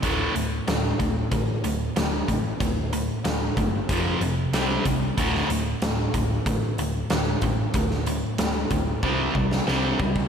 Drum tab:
HH |x-x-x-x-x-x-x-x-|x-x-x-x-x-x-x-x-|x-x-x-x-x-x-x-x-|x-x-x-x---------|
SD |----o-------o---|----o-------o---|-o--o-------o---|-o--o------oo---|
BD |o-----o-o-----o-|o-----o-o-----o-|o-----o-o-----o-|o-----o-o-o---oo|